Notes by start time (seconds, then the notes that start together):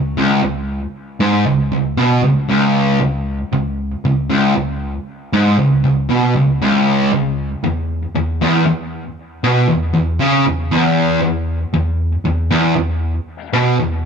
Already playing: C#2
0.17 C#2
0.43 C#2
1.20 G#2
1.46 C#2
1.72 C#2
1.97 B2
2.23 C#2
2.49 C#2
3.01 C#2
3.53 C#2
4.05 C#2
4.30 C#2
4.56 C#2
5.33 G#2
5.59 C#2
5.84 C#2
6.10 B2
6.36 C#2
6.61 C#2
7.13 C#2
7.64 E2
8.15 E2
8.42 E2
8.66 E2
9.44 B2
9.69 E2
9.94 E2
10.20 C#3
10.46 E2
10.71 E2
11.22 E2
11.74 E2
12.25 E2
12.50 E2
12.76 E2
13.53 B2
13.79 E2